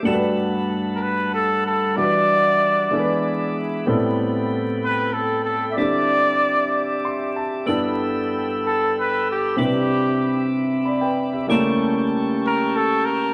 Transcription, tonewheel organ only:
0, 0, Header, 1, 2, 480
1, 0, Start_track
1, 0, Key_signature, 1, "major"
1, 0, Tempo, 634921
1, 39, Time_signature, 6, 3, 24, 8
1, 10084, End_track
2, 0, Start_track
2, 0, Title_t, "Tonewheel organ"
2, 0, Program_c, 0, 16
2, 40, Note_on_c, 0, 78, 47
2, 40, Note_on_c, 0, 83, 54
2, 45, Note_on_c, 0, 55, 50
2, 49, Note_on_c, 0, 81, 46
2, 1468, Note_off_c, 0, 78, 0
2, 1469, Note_off_c, 0, 83, 0
2, 1473, Note_off_c, 0, 81, 0
2, 1485, Note_on_c, 0, 76, 50
2, 1485, Note_on_c, 0, 78, 47
2, 1490, Note_on_c, 0, 86, 60
2, 2185, Note_off_c, 0, 55, 0
2, 2198, Note_off_c, 0, 78, 0
2, 2223, Note_on_c, 0, 68, 48
2, 2226, Note_on_c, 0, 83, 43
2, 2911, Note_off_c, 0, 76, 0
2, 2914, Note_off_c, 0, 86, 0
2, 2919, Note_on_c, 0, 79, 49
2, 2927, Note_off_c, 0, 68, 0
2, 2929, Note_on_c, 0, 69, 50
2, 4348, Note_off_c, 0, 79, 0
2, 4353, Note_off_c, 0, 69, 0
2, 4355, Note_off_c, 0, 83, 0
2, 4365, Note_on_c, 0, 76, 47
2, 4366, Note_on_c, 0, 67, 53
2, 4371, Note_on_c, 0, 86, 59
2, 5791, Note_off_c, 0, 67, 0
2, 5791, Note_off_c, 0, 76, 0
2, 5794, Note_off_c, 0, 86, 0
2, 5795, Note_on_c, 0, 69, 49
2, 5797, Note_on_c, 0, 79, 45
2, 5798, Note_on_c, 0, 83, 48
2, 5803, Note_on_c, 0, 88, 56
2, 7224, Note_off_c, 0, 69, 0
2, 7226, Note_off_c, 0, 79, 0
2, 7226, Note_off_c, 0, 83, 0
2, 7229, Note_off_c, 0, 88, 0
2, 7241, Note_on_c, 0, 76, 50
2, 7242, Note_on_c, 0, 60, 54
2, 7244, Note_on_c, 0, 83, 50
2, 7248, Note_on_c, 0, 86, 54
2, 8666, Note_off_c, 0, 76, 0
2, 8667, Note_off_c, 0, 60, 0
2, 8668, Note_off_c, 0, 83, 0
2, 8670, Note_off_c, 0, 86, 0
2, 8691, Note_on_c, 0, 67, 47
2, 8692, Note_on_c, 0, 61, 57
2, 8692, Note_on_c, 0, 81, 47
2, 8692, Note_on_c, 0, 85, 60
2, 8695, Note_on_c, 0, 79, 48
2, 10084, Note_off_c, 0, 61, 0
2, 10084, Note_off_c, 0, 67, 0
2, 10084, Note_off_c, 0, 79, 0
2, 10084, Note_off_c, 0, 81, 0
2, 10084, Note_off_c, 0, 85, 0
2, 10084, End_track
0, 0, End_of_file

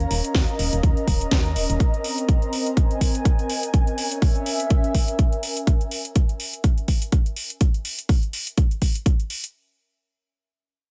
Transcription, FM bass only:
0, 0, Header, 1, 2, 480
1, 0, Start_track
1, 0, Tempo, 483871
1, 1787, Time_signature, 4, 2, 24, 8
1, 10816, End_track
2, 0, Start_track
2, 0, Title_t, "FM bass"
2, 0, Program_c, 0, 39
2, 107, Note_on_c, 0, 27, 99
2, 213, Note_off_c, 0, 27, 0
2, 347, Note_on_c, 0, 39, 93
2, 453, Note_off_c, 0, 39, 0
2, 587, Note_on_c, 0, 27, 93
2, 693, Note_off_c, 0, 27, 0
2, 723, Note_on_c, 0, 27, 86
2, 805, Note_off_c, 0, 27, 0
2, 827, Note_on_c, 0, 39, 82
2, 933, Note_off_c, 0, 39, 0
2, 1067, Note_on_c, 0, 27, 88
2, 1262, Note_off_c, 0, 27, 0
2, 1307, Note_on_c, 0, 39, 85
2, 1546, Note_on_c, 0, 27, 97
2, 1561, Note_off_c, 0, 39, 0
2, 1653, Note_off_c, 0, 27, 0
2, 1683, Note_on_c, 0, 27, 89
2, 1764, Note_off_c, 0, 27, 0
2, 10816, End_track
0, 0, End_of_file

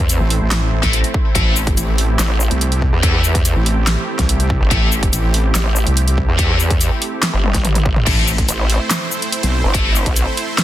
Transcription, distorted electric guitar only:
0, 0, Header, 1, 2, 480
1, 0, Start_track
1, 0, Key_signature, 0, "minor"
1, 0, Tempo, 419580
1, 1548, Time_signature, 4, 2, 24, 8
1, 12169, End_track
2, 0, Start_track
2, 0, Title_t, "Distorted electric guitar"
2, 0, Program_c, 0, 30
2, 947, Note_on_c, 0, 69, 92
2, 952, Note_on_c, 0, 64, 78
2, 958, Note_on_c, 0, 57, 76
2, 1072, Note_off_c, 0, 69, 0
2, 1073, Note_off_c, 0, 57, 0
2, 1073, Note_off_c, 0, 64, 0
2, 1545, Note_on_c, 0, 57, 95
2, 1549, Note_on_c, 0, 64, 79
2, 1554, Note_on_c, 0, 69, 89
2, 1748, Note_off_c, 0, 57, 0
2, 1748, Note_off_c, 0, 64, 0
2, 1748, Note_off_c, 0, 69, 0
2, 3466, Note_on_c, 0, 57, 96
2, 3470, Note_on_c, 0, 64, 84
2, 3474, Note_on_c, 0, 69, 99
2, 3668, Note_off_c, 0, 64, 0
2, 3669, Note_off_c, 0, 57, 0
2, 3669, Note_off_c, 0, 69, 0
2, 5385, Note_on_c, 0, 57, 90
2, 5390, Note_on_c, 0, 64, 85
2, 5395, Note_on_c, 0, 69, 92
2, 5588, Note_off_c, 0, 64, 0
2, 5589, Note_off_c, 0, 57, 0
2, 5589, Note_off_c, 0, 69, 0
2, 7305, Note_on_c, 0, 57, 99
2, 7310, Note_on_c, 0, 64, 80
2, 7316, Note_on_c, 0, 69, 99
2, 7508, Note_off_c, 0, 57, 0
2, 7508, Note_off_c, 0, 64, 0
2, 7508, Note_off_c, 0, 69, 0
2, 9225, Note_on_c, 0, 57, 96
2, 9230, Note_on_c, 0, 64, 82
2, 9236, Note_on_c, 0, 69, 84
2, 9428, Note_off_c, 0, 57, 0
2, 9428, Note_off_c, 0, 64, 0
2, 9428, Note_off_c, 0, 69, 0
2, 11144, Note_on_c, 0, 57, 96
2, 11150, Note_on_c, 0, 64, 82
2, 11155, Note_on_c, 0, 69, 88
2, 11348, Note_off_c, 0, 57, 0
2, 11348, Note_off_c, 0, 64, 0
2, 11348, Note_off_c, 0, 69, 0
2, 12169, End_track
0, 0, End_of_file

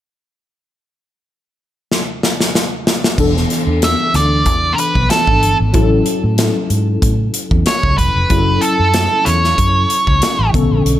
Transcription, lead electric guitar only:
0, 0, Header, 1, 2, 480
1, 0, Start_track
1, 0, Tempo, 640342
1, 466, Time_signature, 4, 2, 24, 8
1, 8243, End_track
2, 0, Start_track
2, 0, Title_t, "Lead electric guitar"
2, 0, Program_c, 0, 29
2, 2880, Note_on_c, 0, 76, 89
2, 3115, Note_off_c, 0, 76, 0
2, 3118, Note_on_c, 0, 74, 79
2, 3544, Note_on_c, 0, 70, 52
2, 3556, Note_off_c, 0, 74, 0
2, 3589, Note_off_c, 0, 70, 0
2, 3595, Note_on_c, 0, 71, 72
2, 3826, Note_off_c, 0, 71, 0
2, 3829, Note_on_c, 0, 69, 67
2, 4171, Note_off_c, 0, 69, 0
2, 5748, Note_on_c, 0, 73, 97
2, 5977, Note_off_c, 0, 73, 0
2, 5980, Note_on_c, 0, 71, 88
2, 6459, Note_on_c, 0, 69, 79
2, 6476, Note_off_c, 0, 71, 0
2, 6934, Note_on_c, 0, 73, 78
2, 6955, Note_off_c, 0, 69, 0
2, 7868, Note_off_c, 0, 73, 0
2, 8243, End_track
0, 0, End_of_file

